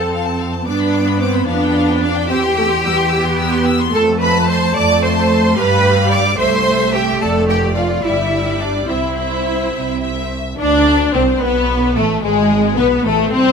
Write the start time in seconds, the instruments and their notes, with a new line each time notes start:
Already playing: double bass section F2, viola section C4, cello section A4, violin section A5
0.00 violin section A5
0.13 violin section F5
0.26 violin section A5
0.41 violin section F5
0.52 violin section A5
0.66 double bass section G2, viola section B3, cello section D4, violin section D5 D6
0.80 violin section B5
0.94 violin section D6
1.07 violin section B5
1.20 cello section C4, violin section C5 D6
1.33 violin section B5
1.47 double bass section F2, cello section B3, viola section D4, violin section B4 F5
1.62 violin section G5
1.75 violin section F5
1.89 violin section G5
2.02 cello section D4, violin section D5 F5
2.15 violin section G5
2.29 double bass section E2, viola section C4, cello section G4, violin section G5 E6
2.42 violin section C6
2.57 viola section A3, violin section E6
2.69 violin section C6
2.84 viola section G3, violin section E6
2.98 violin section C6
3.10 viola section B3, violin section E6
3.25 violin section C6
3.39 violin section E6
3.53 violin section C6
3.66 violin section E6
3.79 violin section C6
3.93 double bass section F2, viola section A3, cello section A4, violin section A5
4.20 cello section B4, violin section A5 B5
4.48 cello section C5, violin section C6
4.75 double bass section F2, viola section A3, cello section D5, violin section D6
5.03 cello section C5, violin section A5 C6
5.56 double bass section G2, viola section G3, cello section B4, violin section F5 B5
5.83 violin section F5
6.11 cello section D5, violin section D6
6.38 double bass section C2, viola section A3, cello section C5, violin section E5 C6
6.65 violin section E5
6.93 cello section G4, violin section G5
7.20 double bass section F1, cello section A4, violin section D5 A5
7.48 cello section G4, violin section D5 G5
7.76 cello section F4, violin section F5
8.03 double bass section G1, viola section G3, cello section E4, violin section D5 E5
8.33 violin section D5
8.60 cello section D4, violin section D5
8.88 double bass section C2, cello section C4, viola section E4, violin section C5 E5
9.19 violin section E5
9.74 double bass section C2
10.02 violin section E5
10.58 double bass section D2, violin section D4 D5, cello section D4, viola section D4
11.13 double bass section C2, viola section C4, violin section C4 C5, cello section C4
11.41 double bass section B1, viola section B3, violin section B3 B4, cello section B3
11.96 double bass section A1, cello section A3, violin section A3 A4, viola section A3
12.23 double bass section G#1, violin section G#3 G#4, cello section G#3, viola section G#3
12.77 double bass section B1, violin section B3 B4, cello section B3, viola section B3
13.04 double bass section A1, cello section A3, viola section A3, violin section A3 A4
13.31 double bass section C2, cello section C4, viola section C4, violin section C4 C5